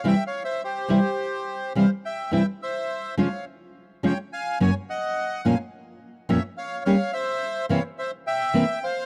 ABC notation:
X:1
M:4/4
L:1/8
Q:1/4=106
K:Cphr
V:1 name="Bandoneon"
(3[=eg] [df] [ce] [Gc]4 [cf] [eg] | [=eg] [ce]2 [df] z2 [dg] [fa] | [da] [e_g]2 [fa] z2 [d=e] [df] | [df] [c=e]2 [df] [ce] [eg]2 [cf] |]
V:2 name="Nylon-string guitar" clef=bass
[C,=E,G,C=E] z2 [C,E,G,CE] z2 [C,E,G,CE] z | [C,=E,G,C=E] z2 [D,F,A,DF] z2 [D,F,A,DF] z | [_G,,D,_G,B,D_G] z2 [F,,B,,F,B,DF] z2 [F,,B,,F,B,DF] z | [G,B,DG] z2 [C,=E,B,C=E] z2 [C,E,B,CE] z |]